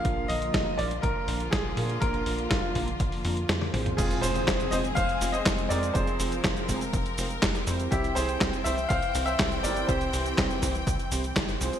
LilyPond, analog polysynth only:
\new Staff \with { instrumentName = "Analog polysynth" } { \time 4/4 \key f \dorian \tempo 4 = 122 <bes d' f' bes'>8 <d bes f' bes'>4 <bes d' f' bes'>16 r8. <bes d' f' bes'>16 r8. <bes d' f' bes'>8~ | <bes d' f' bes'>8 <bes d' f' bes'>4 <bes d' f' bes'>16 r8. <bes d' f' bes'>16 r8. <c' f' aes' c''>8~ | <c' f' aes' c''>8 <c' f' aes' c''>4 <c' f' aes' c''>16 r8. <c' f' aes' c''>16 r8. <c' f' aes' c''>8~ | <c' f' aes' c''>8 <c' f' aes' c''>4 <c' f' aes' c''>16 r8. <c' f' aes' c''>16 r8. <c' e' g' c''>8~ |
<c' e' g' c''>8 <c' e' c'' g''>4 <c' e' g' c''>16 r8. <c' e' g' c''>16 r8. <c' e' g' c''>8~ | <c' e' g' c''>8 <c' e' g' c''>4 <c' e' g' c''>16 r8. <c' e' g' c''>16 r8. <c' f' aes' c''>8 | }